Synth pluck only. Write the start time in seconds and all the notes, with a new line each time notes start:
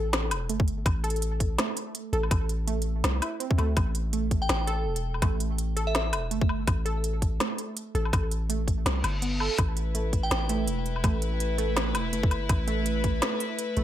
Already playing: A4
0.49 A3
1.04 A4
1.58 A3
2.13 A4
2.67 A3
3.22 E4
3.40 C4
3.58 A3
4.13 A3
4.67 A4
5.22 A3
5.77 A4
6.31 A3
6.85 A4
7.40 A3
7.95 A4
8.49 A3
9.22 B3
9.40 A4
9.95 A3
10.49 A3
11.04 A3
11.58 A3
12.13 A3
12.67 A3
13.22 A3
13.77 A3